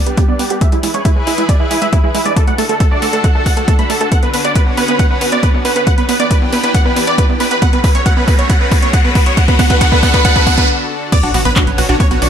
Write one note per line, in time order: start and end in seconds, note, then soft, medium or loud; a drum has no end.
0.00 0.60 G3 medium
0.00 0.60 B3 medium
0.00 0.60 D4 medium
0.07 0.14 G1 medium
0.07 0.11 B3 medium
0.07 0.13 G4 medium
0.07 closed hi-hat medium
0.17 0.22 B3 medium
0.17 0.24 G4 medium
0.17 kick loud
0.17 closed hi-hat medium
0.28 0.33 B3 medium
0.28 0.35 D5 loud
0.39 0.47 G1 loud
0.39 0.44 B3 medium
0.39 0.46 G4 medium
0.39 open hi-hat medium
0.50 0.58 G1 medium
0.50 0.55 B3 medium
0.50 0.57 G4 medium
0.50 closed hi-hat medium
0.61 2.35 E3 medium
0.61 0.66 G#3 medium
0.61 2.35 E4 medium
0.61 2.35 G#4 medium
0.61 2.35 B4 medium
0.61 0.68 E5 loud
0.61 kick loud
0.61 closed hi-hat medium
0.72 0.80 E2 medium
0.72 0.77 G#3 medium
0.72 0.79 E4 medium
0.72 closed hi-hat soft
0.83 0.91 E2 loud
0.83 0.88 G#3 medium
0.83 0.90 E4 medium
0.83 open hi-hat loud
0.94 1.02 E2 medium
0.94 0.99 G#3 medium
0.94 1.01 C#5 medium
0.94 closed hi-hat soft
1.05 1.10 G#3 medium
1.05 1.12 E4 medium
1.05 kick loud
1.05 closed hi-hat medium
1.16 1.23 E2 medium
1.16 1.21 G#3 medium
1.27 1.34 E2 loud
1.27 1.32 G#3 medium
1.27 1.34 E4 medium
1.27 open hi-hat loud
1.38 1.45 E2 medium
1.38 1.43 G#3 medium
1.38 1.45 E4 medium
1.38 closed hi-hat soft
1.49 1.54 G#3 medium
1.49 1.56 D5 medium
1.49 kick loud
1.49 closed hi-hat medium
1.60 1.67 E2 medium
1.60 1.65 G#3 medium
1.60 1.67 E4 medium
1.71 1.78 E2 loud
1.71 1.76 G#3 medium
1.71 1.78 E4 medium
1.71 open hi-hat loud
1.82 1.89 E2 medium
1.82 1.87 G#3 medium
1.82 1.88 E5 medium
1.82 closed hi-hat medium
1.93 1.98 G#3 medium
1.93 1.99 E4 medium
1.93 kick loud
1.93 closed hi-hat medium
2.04 2.11 D2 medium
2.04 2.09 G#3 medium
2.04 2.10 E4 medium
2.15 2.22 E2 loud
2.15 2.19 G#3 medium
2.15 2.21 E4 medium
2.15 open hi-hat loud
2.25 2.33 E2 medium
2.25 2.30 G#3 medium
2.25 2.32 D5 medium
2.25 closed hi-hat soft
2.36 5.83 D3 medium
2.36 2.41 A3 medium
2.36 4.10 D4 medium
2.36 4.10 F#4 medium
2.36 2.43 A4 medium
2.36 4.10 A4 loud
2.36 kick loud
2.36 closed hi-hat medium
2.47 2.55 D2 medium
2.47 2.52 A3 medium
2.47 2.54 F#5 medium
2.47 closed hi-hat soft
2.58 2.66 D2 loud
2.58 2.63 A3 medium
2.58 2.65 A4 medium
2.58 open hi-hat loud
2.69 2.77 D2 medium
2.69 2.74 A3 medium
2.69 2.76 A4 medium
2.69 closed hi-hat soft
2.80 2.85 A3 medium
2.80 2.87 A4 medium
2.80 kick loud
2.80 closed hi-hat medium
2.91 2.99 D2 medium
2.91 2.96 A3 medium
2.91 2.98 D5 loud
3.02 3.10 D2 loud
3.02 3.07 A3 medium
3.02 3.09 A4 medium
3.02 open hi-hat medium
3.13 3.21 D2 medium
3.13 3.18 A3 medium
3.13 3.20 A4 medium
3.13 closed hi-hat soft
3.24 3.29 A3 medium
3.24 3.31 F#5 medium
3.24 kick loud
3.24 closed hi-hat medium
3.35 3.42 D2 medium
3.35 3.40 A3 medium
3.35 3.42 A4 medium
3.46 3.53 D2 loud
3.46 3.51 A3 medium
3.46 3.53 F#5 medium
3.46 kick medium
3.46 open hi-hat loud
3.57 3.64 D2 medium
3.57 3.62 A3 medium
3.57 3.64 A4 medium
3.57 closed hi-hat medium
3.68 3.73 A3 medium
3.68 3.75 A4 medium
3.68 kick loud
3.68 closed hi-hat medium
3.79 3.86 A1 medium
3.79 3.84 A3 medium
3.79 3.86 B5 medium
3.79 closed hi-hat soft
3.90 3.97 D2 loud
3.90 3.95 A3 medium
3.90 3.97 A4 medium
3.90 open hi-hat loud
4.01 4.08 D2 medium
4.01 4.06 A3 medium
4.01 4.08 A4 medium
4.01 closed hi-hat soft
4.12 7.59 B3 medium
4.12 4.17 B3 medium
4.12 5.85 C#4 medium
4.12 5.85 F#4 medium
4.12 4.18 F#5 medium
4.12 kick loud
4.12 closed hi-hat medium
4.12 riser medium
4.23 4.30 D2 medium
4.23 4.28 B3 medium
4.23 4.29 B4 medium
4.23 closed hi-hat soft
4.34 4.41 D2 loud
4.34 4.38 B3 medium
4.34 4.40 B4 medium
4.34 open hi-hat loud
4.44 4.52 D2 medium
4.44 4.49 B3 medium
4.44 4.51 D5 medium
4.44 closed hi-hat soft
4.55 4.60 B3 medium
4.55 4.62 B4 medium
4.55 kick loud
4.55 closed hi-hat medium
4.66 4.74 D2 medium
4.66 4.71 B3 medium
4.77 4.85 D2 loud
4.77 4.82 B3 medium
4.77 4.84 B4 medium
4.77 open hi-hat medium
4.88 4.96 D2 medium
4.88 4.93 B3 medium
4.88 4.95 B4 medium
4.88 closed hi-hat soft
4.99 5.04 B3 medium
4.99 5.06 F#5 medium
4.99 kick loud
4.99 closed hi-hat medium
5.10 5.18 D2 medium
5.10 5.15 B3 medium
5.10 5.17 B4 medium
5.21 5.29 D2 loud
5.21 5.26 B3 medium
5.21 5.28 B4 medium
5.21 open hi-hat loud
5.32 5.39 D2 medium
5.32 5.37 B3 medium
5.32 5.39 D5 medium
5.32 closed hi-hat medium
5.43 5.48 B3 medium
5.43 5.50 B4 medium
5.43 kick loud
5.43 closed hi-hat medium
5.54 5.61 D2 medium
5.54 5.59 B3 medium
5.65 5.72 D2 loud
5.65 5.70 B3 medium
5.65 5.72 B4 medium
5.65 open hi-hat medium
5.76 5.83 D2 medium
5.76 5.81 B3 medium
5.76 5.83 B4 medium
5.76 closed hi-hat medium
5.87 7.60 E3 medium
5.87 5.92 B3 medium
5.87 7.60 D4 medium
5.87 7.60 G4 medium
5.87 5.94 F#5 medium
5.87 kick loud
5.87 closed hi-hat medium
5.98 6.05 E2 medium
5.98 6.03 B3 medium
5.98 6.05 B4 medium
5.98 closed hi-hat soft
6.09 6.16 E2 loud
6.09 6.14 B3 medium
6.09 6.16 B4 medium
6.09 open hi-hat loud
6.20 6.27 E2 medium
6.20 6.25 B3 medium
6.20 6.26 D5 medium
6.20 closed hi-hat medium
6.31 6.36 B3 medium
6.31 6.37 B4 medium
6.31 kick loud
6.31 closed hi-hat medium
6.42 6.49 E2 medium
6.42 6.47 B3 medium
6.53 6.60 E2 loud
6.53 6.57 B3 medium
6.53 6.59 B4 medium
6.53 open hi-hat medium
6.63 6.71 E2 medium
6.63 6.68 B3 medium
6.63 6.70 B4 medium
6.63 closed hi-hat medium
6.74 6.79 B3 medium
6.74 6.81 F#5 medium
6.74 kick loud
6.74 closed hi-hat medium
6.85 6.93 E2 medium
6.85 6.90 B3 medium
6.85 6.92 B4 medium
6.96 7.04 E2 loud
6.96 7.01 B3 medium
6.96 7.03 B4 medium
6.96 open hi-hat loud
7.07 7.15 E2 medium
7.07 7.12 B3 medium
7.07 7.14 D5 medium
7.07 closed hi-hat medium
7.18 7.23 B3 medium
7.18 7.25 B4 medium
7.18 kick loud
7.18 closed hi-hat medium
7.29 7.37 D2 medium
7.29 7.34 B3 medium
7.40 7.48 E2 loud
7.40 7.45 B3 medium
7.40 7.47 B4 medium
7.40 open hi-hat medium
7.51 7.58 E2 medium
7.51 7.56 B3 medium
7.51 7.58 B4 medium
7.51 closed hi-hat medium
7.62 9.35 A3 medium
7.62 7.67 B3 medium
7.62 9.35 C#4 medium
7.62 11.09 F#4 loud
7.62 7.69 F#5 medium
7.62 kick loud
7.62 closed hi-hat medium
7.73 7.80 F#2 medium
7.73 7.78 B3 medium
7.73 7.80 B4 medium
7.73 closed hi-hat soft
7.84 7.91 F#2 loud
7.84 7.89 B3 medium
7.84 7.91 B4 medium
7.84 kick loud
7.84 open hi-hat loud
7.95 8.02 F#2 medium
7.95 8.00 B3 medium
7.95 8.02 C#5 medium
7.95 closed hi-hat medium
8.06 8.11 B3 medium
8.06 8.13 F#5 loud
8.06 kick loud
8.06 closed hi-hat medium
8.17 8.24 F#2 medium
8.17 8.22 B3 medium
8.17 8.24 B4 medium
8.28 8.35 F#2 loud
8.28 8.33 B3 medium
8.28 8.35 B4 medium
8.28 kick loud
8.28 open hi-hat medium
8.39 8.46 F#2 medium
8.39 8.44 B3 medium
8.39 8.45 C#5 medium
8.39 closed hi-hat medium
8.50 8.55 B3 medium
8.50 8.56 F#5 loud
8.50 kick loud
8.50 closed hi-hat medium
8.61 8.68 F#2 medium
8.61 8.65 B3 medium
8.61 8.67 B4 medium
8.71 8.79 F#2 loud
8.71 8.76 B3 medium
8.71 8.78 B4 medium
8.71 kick loud
8.71 open hi-hat loud
8.82 8.90 F#2 medium
8.82 8.87 B3 medium
8.82 8.89 C#5 medium
8.82 closed hi-hat medium
8.93 8.98 B3 medium
8.93 9.00 F#5 loud
8.93 kick loud
8.93 closed hi-hat medium
9.04 9.12 E2 medium
9.04 9.09 B3 medium
9.04 9.11 B4 medium
9.15 9.23 F#2 loud
9.15 9.20 B3 medium
9.15 9.22 B4 medium
9.15 kick loud
9.15 open hi-hat medium
9.26 9.34 F#2 medium
9.26 9.31 B3 medium
9.26 9.33 C#5 loud
9.26 closed hi-hat medium
9.37 11.11 D3 medium
9.37 9.42 B3 medium
9.37 11.11 D4 medium
9.37 11.11 A4 loud
9.37 9.44 F#5 loud
9.37 kick loud
9.37 closed hi-hat medium
9.48 9.53 B3 medium
9.48 9.55 B4 medium
9.48 kick medium
9.48 closed hi-hat soft
9.59 9.66 D2 loud
9.59 9.64 B3 medium
9.59 9.66 F#5 loud
9.59 kick loud
9.59 open hi-hat loud
9.70 9.77 D2 medium
9.70 9.75 B3 medium
9.70 9.77 B4 medium
9.70 kick medium
9.70 closed hi-hat medium
9.81 9.86 B3 medium
9.81 9.88 F#5 loud
9.81 kick loud
9.81 closed hi-hat medium
9.92 9.99 D2 medium
9.92 9.97 B3 medium
9.92 9.99 B4 medium
9.92 kick medium
10.03 10.10 D2 loud
10.03 10.08 B3 medium
10.03 10.10 F#5 loud
10.03 kick loud
10.03 open hi-hat medium
10.14 10.19 B3 medium
10.14 10.21 B4 medium
10.14 kick medium
10.14 closed hi-hat medium
10.25 10.30 B3 medium
10.25 10.32 F#5 loud
10.25 kick loud
10.25 closed hi-hat medium
10.36 10.43 D2 medium
10.36 10.41 B3 medium
10.36 10.43 B4 medium
10.36 kick medium
10.36 closed hi-hat soft
10.47 10.54 D2 loud
10.47 10.52 B3 medium
10.47 10.53 F#5 loud
10.47 kick loud
10.47 open hi-hat loud
10.58 10.65 D2 medium
10.58 10.63 B3 medium
10.58 10.64 B4 medium
10.58 kick medium
10.58 closed hi-hat medium
11.12 12.29 D3 medium
11.12 11.17 B3 medium
11.12 12.29 B3 medium
11.12 12.29 C#4 medium
11.12 11.19 D5 loud
11.12 11.19 D6 loud
11.12 kick loud
11.12 closed hi-hat medium
11.12 crash loud
11.12 impact medium
11.23 11.31 B1 medium
11.23 11.31 D4 loud
11.23 11.30 F#4 medium
11.23 11.30 F#5 medium
11.23 closed hi-hat soft
11.34 11.42 B1 loud
11.34 11.37 B3 loud
11.34 11.41 F#4 medium
11.34 11.41 F#5 medium
11.34 open hi-hat loud
11.45 11.53 B1 medium
11.45 11.50 B3 medium
11.45 11.52 B4 medium
11.45 11.52 B5 medium
11.45 closed hi-hat soft
11.56 11.64 D4 loud
11.56 11.63 F#4 medium
11.56 11.63 F#5 medium
11.56 kick loud
11.56 clap loud
11.56 closed hi-hat medium
11.67 11.75 B1 medium
11.67 11.70 B3 loud
11.67 closed hi-hat soft
11.78 11.85 B1 loud
11.78 11.83 B3 medium
11.78 11.85 F#4 medium
11.78 11.85 F#5 medium
11.78 open hi-hat loud
11.89 11.96 B1 medium
11.89 11.96 D4 loud
11.89 11.96 F#4 medium
11.89 11.96 F#5 medium
11.89 closed hi-hat soft
12.00 12.03 B3 loud
12.00 12.07 C#5 loud
12.00 12.07 C#6 medium
12.00 kick loud
12.00 closed hi-hat medium
12.11 12.18 B1 medium
12.11 12.16 B3 medium
12.11 12.18 F#4 medium
12.11 12.18 F#5 medium
12.11 closed hi-hat soft
12.22 12.29 B1 loud
12.22 12.29 D4 loud
12.22 12.29 F#4 medium
12.22 12.29 F#5 medium
12.22 open hi-hat loud